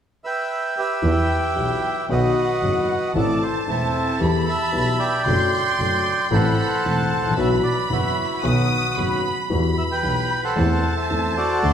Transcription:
0.24 B4 E5 G5
0.77 G4 B4 E5
1.02 E2 E3 G3 B3 G4 G5
1.56 B1 B2 E3 G3 B3 G4
2.09 B1 B2 D#3 F#3 B3 F#4 B4 D#5 F#5
2.62 F#1 F#2 D#3 F#3 B3 F#4
3.15 A1 A2 E3 A3 C4 A4 D5 A5
3.42 C5
3.67 E1 E2 E3 A3 C4 E4 A4
4.20 E2 E3 G3 B3 G4 B5
4.49 E5 A5
4.72 B1 B2 E3 G3 B3 G4
4.99 D5 G5
5.26 F#1 F#2 F#3 A3 D4 A4 C6
5.79 F#1 F#2 F#3 A3 D4 A4
6.31 A1 A2 E3 A3 C4 A4 C5 F#5 B5
6.85 E1 E2 E3 A3 C4 A4 A5
7.10 A1
7.17 G#1
7.24 A1
7.30 A#1
7.37 B1 B2 E3 F#3 B3 F#4 B4 E5 B5
7.63 D5
7.90 F#1 F#2 E3 F#3 B3 E4 F#4 B4
8.43 B1 B2 D#3 F#3 B3 F#4 D#6
8.96 F#1 F#2 D#3 F#3 B3 F#4 B5
9.50 E2 E3 G3 B3 F#4 B5
9.78 E5
9.92 B4 G5
10.02 B1 B2 E3 G3 B3 F#4
10.44 A4 C5 F#5
10.56 E2 E3 A3 C4 A4 A5
10.97 A4 C5 E5
11.10 E2 E3 A3 C4 A4
11.37 F#4 A4 D5
11.63 D2 D3 F#3 A3 D4 A4 C6

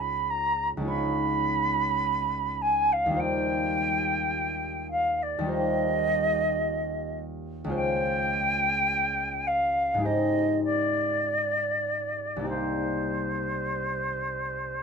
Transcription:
Already playing: C#2 G#3 D#4 F4 C#5
0.00 B5
0.30 A#5
0.77 C#2 G#3
0.82 D#4 F4
0.87 C#5 B5
2.62 G#5
2.92 F5
3.06 D#2 G3
3.12 D#4 F4
3.16 C5 G5
4.91 F5
5.22 D5
5.39 D#2 G3
5.43 D#4 F4
5.49 C5 D#5
7.64 C#2 G#3
7.69 F4 C5
7.75 G5
9.47 F5
9.94 G#2 G#3
10.00 D#4 G4
10.05 C5 D#5
10.64 D5
12.36 C2 A#3
12.41 D#4 G4
12.47 C5 D5

